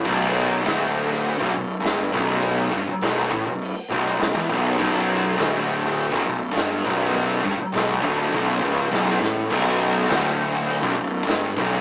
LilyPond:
<<
  \new Staff \with { instrumentName = "Distorted electric guitar" } { \clef bass \time 4/4 \key b \minor \tempo 4 = 102 b,,4 d,4~ d,16 b,,16 b,,8 g,8 b,,8~ | b,,8 g,16 r16 b,,8 a,16 b,,8 r16 b,,8 b,,16 e,16 b,,8 | b,,4 d,4~ d,16 b,,16 b,,8 g,8 b,,8~ | b,,8 g,16 r16 b,,8 d,8 b,,8 cis,8 b,,8 a,8 |
b,,4 d,4~ d,16 b,,16 b,,8 g,8 b,,8 | }
  \new Staff \with { instrumentName = "Distorted electric guitar" } { \clef bass \time 4/4 \key b \minor b,,4 d,4~ d,16 b,,16 b,,8 g,8 b,,8~ | b,,8 g,16 r16 b,,8 a,16 b,,8 r16 b,,8 b,,16 e,16 b,,8 | b,,4 d,4~ d,16 b,,16 b,,8 g,8 b,,8~ | b,,8 g,16 r16 b,,8 d,8 b,,8 cis,8 b,,8 a,8 |
b,,4 d,4~ d,16 b,,16 b,,8 g,8 b,,8 | }
  \new Staff \with { instrumentName = "Distorted electric guitar" } { \clef bass \time 4/4 \key b \minor b,,4 d,4~ d,16 b,,16 b,,8 g,8 b,,8~ | b,,8 g,16 r16 b,,8 a,16 b,,8 r16 b,,8 b,,16 e,16 b,,8 | b,,4 d,4~ d,16 b,,16 b,,8 g,8 b,,8~ | b,,8 g,16 r16 b,,8 d,8 b,,8 cis,8 b,,8 a,8 |
b,,4 d,4~ d,16 b,,16 b,,8 g,8 b,,8 | }
  \new Staff \with { instrumentName = "Fingered electric bass" } { \clef bass \time 4/4 \key b \minor b,,,4 d,,4~ d,,16 b,,,16 b,,,8 g,,8 b,,,8~ | b,,,8 g,,16 r16 b,,,8 a,,16 b,,,8 r16 b,,,8 b,,,16 e,,16 b,,,8 | b,,,4 d,,4~ d,,16 b,,,16 b,,,8 g,,8 b,,,8~ | b,,,8 g,,16 r16 b,,,8 d,,8 b,,,8 cis,,8 b,,,8 a,,8 |
b,,,4 d,,4~ d,,16 b,,,16 b,,,8 g,,8 b,,,8 | }
  \new DrumStaff \with { instrumentName = "Drums" } \drummode { \time 4/4 <cymc bd>4 <hho sn>8. sn16 hho16 bd8. <hho sn>8 bd8 | <hho bd>8 bd8 <hho sn>8 bd8 hho8 bd8 <hho sn>4 | <cymc bd>4 <hho sn>8. sn16 hho16 bd8. <hho sn>8 bd8 | <hho bd>8 bd8 <hho sn>8 bd8 <hho bd>4 sn16 sn16 sn16 bd16 |
<cymc bd>4 <hho sn>4 hho16 bd8. <hho sn>8 bd8 | }
>>